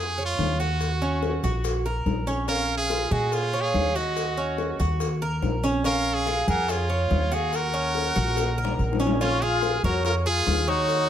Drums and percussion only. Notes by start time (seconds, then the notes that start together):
0.18 high bongo, maracas
0.39 high bongo, low bongo, maracas
0.60 high bongo, maracas
0.81 high bongo, maracas
1.02 maracas
1.23 high bongo, maracas
1.44 high bongo, maracas
1.64 high bongo, maracas
1.86 high bongo, maracas
2.06 high bongo, low bongo, maracas
2.27 high bongo, maracas
2.48 high bongo, maracas
2.69 maracas
2.90 high bongo
3.11 high bongo, maracas
3.32 high bongo, maracas
3.53 high bongo, maracas
3.74 high bongo, low bongo, maracas
3.96 high bongo, maracas
4.17 high bongo, maracas
4.38 maracas
4.58 high bongo, maracas
4.80 high bongo, maracas
5.00 high bongo, maracas
5.22 high bongo, maracas
5.42 high bongo, low bongo, maracas
5.63 high bongo, maracas
5.84 high bongo, maracas
6.27 high bongo, maracas
6.48 high bongo, maracas
6.68 high bongo, maracas
6.90 high bongo, maracas
7.11 high bongo, low bongo, maracas
7.32 high bongo, maracas
7.53 high bongo, maracas
7.74 maracas
7.95 high bongo, maracas
8.16 high bongo, maracas
8.37 high bongo, maracas
8.58 maracas
8.65 low bongo
8.79 maracas
8.93 low bongo
9.00 maracas
9.07 low bongo
9.21 high bongo, maracas
9.42 maracas
9.63 high bongo, maracas
9.84 maracas
10.05 high bongo, maracas
10.47 high bongo, low bongo, maracas
10.68 maracas
10.88 high bongo, maracas